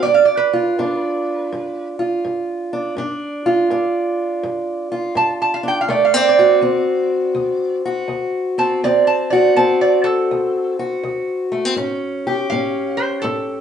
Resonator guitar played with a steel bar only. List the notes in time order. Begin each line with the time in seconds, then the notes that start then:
0.03 D5
0.14 F5
0.25 D5
0.37 B4
5.17 A5
5.42 A5
5.54 F5
5.68 G5
5.81 F5
5.90 D5
6.05 F5
6.17 D5
6.29 D5
8.59 A5
8.84 D5
9.07 A5
9.30 D5
9.56 A5
9.81 D5
10.04 A4
12.50 F5
12.97 C5
13.22 A4